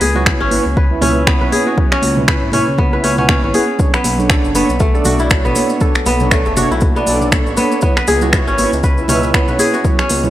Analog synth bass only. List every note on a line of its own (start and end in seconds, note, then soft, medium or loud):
0.01 0.35 C#2 loud
0.41 0.59 G#1 medium
0.66 0.98 C#2 medium
1.02 1.36 C#2 loud
1.41 1.50 B1 medium
2.03 2.37 C#2 loud
2.42 2.60 G#1 medium
2.68 2.99 C#2 medium
3.03 3.37 C#2 medium
3.43 3.52 G#1 medium
4.05 4.39 B1 loud
4.44 4.62 F#1 medium
4.69 5.01 B1 medium
5.05 5.39 B1 loud
5.45 5.53 A1 medium
6.06 6.40 B1 loud
6.46 6.64 F#1 medium
6.71 7.03 B1 medium
7.07 7.41 B1 medium
7.47 7.55 A1 medium
8.08 8.42 C#2 loud
8.47 8.66 G#1 medium
8.73 9.05 C#2 medium
9.09 9.43 C#2 loud
9.49 9.57 B1 medium
10.10 10.30 C#2 loud